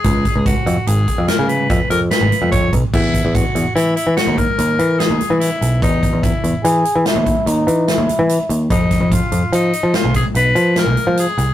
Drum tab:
CC |--------------|x-------------|--------------|--------------|
HH |xxxxxxxxxxxxxx|-xxxxxxxxxxxxx|xxxxxxxxxxxxxx|xxxxxxxxxxxxxx|
SD |------o-o-o---|----o-o---o-o-|------o---o---|-o----o---o---|
BD |ooo--o--o---oo|ooo----o------|ooo----o------|ooo----o------|